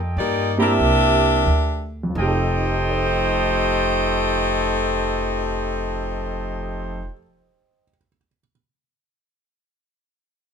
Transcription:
0.00 0.15 F2 medium
0.00 0.50 F4 medium
0.00 0.49 A4 medium
0.00 0.49 D#5 medium
0.00 0.49 G5 medium
0.17 0.77 G2 medium
0.17 0.55 A#3 medium
0.17 0.56 D#4 medium
0.17 0.55 G4 medium
0.17 0.55 D5 medium
0.57 1.40 A#3 medium
0.57 1.40 C4 medium
0.57 1.40 D4 medium
0.57 1.92 D4 loud
0.57 1.40 E4 medium
0.57 0.72 E4 medium
0.57 1.40 G4 medium
0.57 1.92 G4 loud
0.57 1.92 A#4 loud
0.57 0.72 C5 medium
0.57 0.72 D5 medium
0.57 1.93 E5 loud
0.57 0.72 A#5 medium
0.79 1.43 C2 medium
1.46 2.14 D2 medium
2.03 6.99 F2 medium
2.10 7.05 F3 medium
2.15 7.07 F1 medium
2.15 7.09 A3 medium
2.15 7.11 D#4 medium
2.15 7.10 D#4 medium
2.15 7.12 F4 loud
2.15 7.10 G4 medium
2.15 7.12 A4 medium
2.15 7.10 C5 medium
2.15 7.12 D#5 medium
2.15 7.11 G5 loud
2.21 7.17 G4 medium
2.28 7.23 A4 medium
2.90 7.82 C5 soft
2.98 7.89 D#5 soft
3.06 7.98 G5 soft
3.16 8.07 C6 soft
3.25 8.17 D#6 soft
3.36 8.27 G6 soft
3.48 8.39 C7 soft
3.60 8.52 D#7 soft

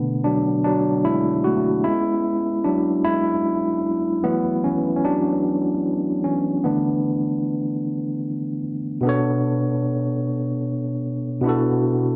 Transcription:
0.00 0.60 B2 soft
0.00 0.21 D3 medium
0.00 0.61 A3 soft
0.00 0.27 B3 medium
0.00 0.23 D4 medium
0.24 0.62 F#3 medium
0.24 0.63 D4 medium
0.64 1.02 F#3 medium
0.64 1.05 D4 medium
1.05 1.43 G#3 medium
1.05 1.42 E4 medium
1.44 1.82 A3 medium
1.44 1.85 F#4 medium
1.84 2.61 G#3 medium
1.84 4.20 B3 soft
1.84 4.20 C#4 soft
1.84 3.03 E4 medium
2.64 3.02 F#3 medium
2.64 3.05 D4 medium
3.04 3.91 G#3 medium
3.04 3.90 E4 loud
4.24 4.62 E3 medium
4.24 4.77 F#3 medium
4.24 4.77 A3 soft
4.24 4.65 B3 medium
4.24 4.78 E4 medium
4.64 4.96 E3 medium
4.64 4.95 C#4 medium
4.96 5.04 C#4 medium
5.04 6.21 F#3 medium
5.04 6.28 D4 medium
6.24 6.62 E3 soft
6.24 6.65 C#4 medium
6.64 8.61 D3 medium
6.64 7.17 E3 soft
6.64 7.18 A3 soft
6.64 8.60 B3 medium
6.64 7.18 D4 medium
9.01 11.38 B2 medium
9.01 11.39 B3 medium
9.01 11.40 D4 medium
9.07 11.41 A4 medium
9.07 11.42 C#5 medium
11.41 12.16 B2 medium
11.41 12.16 B3 medium
11.41 12.16 D4 medium
11.46 12.16 E4 medium
11.46 12.16 F#4 medium
11.46 12.16 A4 medium

